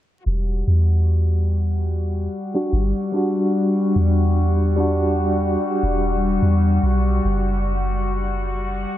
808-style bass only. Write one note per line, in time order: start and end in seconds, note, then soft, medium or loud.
0.26 0.62 E1 medium
0.67 2.28 E2 medium
2.72 2.92 G1 medium
3.95 5.56 E2 medium
5.83 6.38 E1 medium
6.42 6.79 E2 medium
6.83 7.20 B1 medium
7.24 8.85 F#1 medium